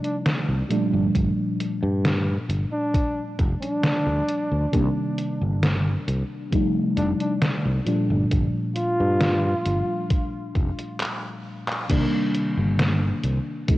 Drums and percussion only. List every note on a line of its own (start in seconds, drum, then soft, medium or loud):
0.04 closed hi-hat soft
0.26 snare loud
0.26 closed hi-hat medium
0.71 closed hi-hat medium
1.15 kick loud
1.15 closed hi-hat medium
1.60 closed hi-hat medium
2.05 snare loud
2.05 closed hi-hat medium
2.50 closed hi-hat medium
2.94 kick loud
2.94 closed hi-hat medium
3.39 kick loud
3.39 closed hi-hat medium
3.63 closed hi-hat soft
3.83 snare loud
3.83 closed hi-hat medium
4.29 closed hi-hat medium
4.73 kick loud
4.73 closed hi-hat medium
5.18 closed hi-hat medium
5.63 snare loud
5.63 closed hi-hat medium
6.08 closed hi-hat medium
6.52 kick loud
6.52 closed hi-hat medium
6.97 closed hi-hat medium
7.20 closed hi-hat soft
7.42 snare loud
7.42 closed hi-hat medium
7.86 closed hi-hat medium
8.31 kick loud
8.31 closed hi-hat medium
8.76 closed hi-hat medium
9.21 snare loud
9.21 closed hi-hat medium
9.66 closed hi-hat medium
10.10 kick loud
10.10 closed hi-hat medium
10.55 kick loud
10.55 closed hi-hat medium
10.79 closed hi-hat soft
11.00 clap loud
11.68 clap medium
11.90 kick loud
11.90 closed hi-hat medium
11.90 crash loud
12.35 closed hi-hat medium
12.79 snare loud
12.79 closed hi-hat medium
13.24 closed hi-hat medium
13.68 kick loud
13.68 closed hi-hat medium